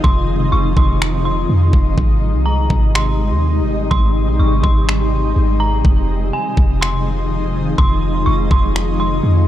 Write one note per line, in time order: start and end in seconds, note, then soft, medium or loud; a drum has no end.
0.00 1.94 C3 medium
0.00 5.81 D#3 medium
0.00 1.94 F3 medium
0.00 5.81 G#3 medium
0.00 5.81 D#4 medium
0.00 0.49 C6 loud
0.04 0.51 F1 loud
0.04 kick loud
0.52 0.76 F1 loud
0.52 0.75 C#6 medium
0.77 1.46 F1 loud
0.77 1.22 C6 medium
0.77 kick loud
1.02 finger snap loud
1.25 1.94 C6 medium
1.49 1.73 F2 loud
1.73 1.97 F1 loud
1.73 kick loud
1.97 2.35 G#1 loud
1.97 9.48 C3 medium
1.97 5.81 G3 medium
1.97 kick loud
2.34 2.68 C2 medium
2.46 2.91 A#5 medium
2.70 3.32 G#1 loud
2.70 kick loud
2.95 3.40 C6 medium
2.95 finger snap loud
3.31 3.62 D#2 loud
3.61 3.90 G#1 loud
3.91 4.29 G#1 loud
3.91 4.36 C6 loud
3.91 kick loud
4.27 4.39 A#1 loud
4.39 4.63 G#1 loud
4.39 4.63 C#6 medium
4.63 5.33 G#1 loud
4.63 5.56 C6 medium
4.63 kick loud
4.89 finger snap loud
5.36 5.83 G#1 loud
5.60 5.83 A#5 medium
5.85 6.31 F1 loud
5.85 9.48 D#3 medium
5.85 9.48 F3 medium
5.85 9.48 G#3 medium
5.85 9.48 D#4 medium
5.85 kick loud
6.33 6.79 G#5 medium
6.57 7.74 F1 loud
6.57 kick loud
6.81 7.27 C6 medium
6.81 finger snap loud
7.78 8.25 F1 loud
7.78 8.24 C6 loud
7.78 kick loud
8.26 8.50 F1 loud
8.26 8.49 C#6 medium
8.51 9.21 F1 loud
8.51 8.97 C6 medium
8.51 kick loud
8.76 finger snap loud
9.00 9.48 C6 medium
9.23 9.47 F2 loud